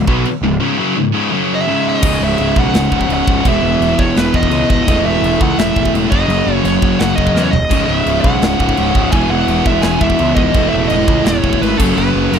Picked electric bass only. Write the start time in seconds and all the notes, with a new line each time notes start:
0.07 B1
0.41 C#1
2.03 C#1
2.21 C#1
2.39 C#1
2.56 B1
2.74 C#1
2.91 C#1
3.09 C#1
3.27 C#1
3.45 E1
3.63 E1
3.80 E1
3.98 E1
4.16 E1
4.34 E1
4.50 C#2
4.70 C#1
4.88 E1
5.04 E1
5.22 E1
5.40 C#2
5.58 E1
5.76 E1
5.93 E1
6.12 F#1
6.28 F#1
6.47 F#1
6.64 F#1
6.82 F#1
7.00 F#1
7.18 F#1
7.35 E2
7.51 E1
7.71 C#1
7.88 C#1
8.06 C#1
8.24 B1
8.40 C#1
8.59 C#1
8.78 C#1
8.95 C#1
9.12 E1
9.29 E1
9.47 E1
9.66 E1
9.83 E1
10.01 E1
10.20 C#2
10.36 C#1
10.54 E1
10.74 E1
10.91 E1
11.07 C#2
11.26 E1
11.43 E1
11.61 G#1
11.79 F#1
11.97 F#1
12.15 F#1
12.32 F#1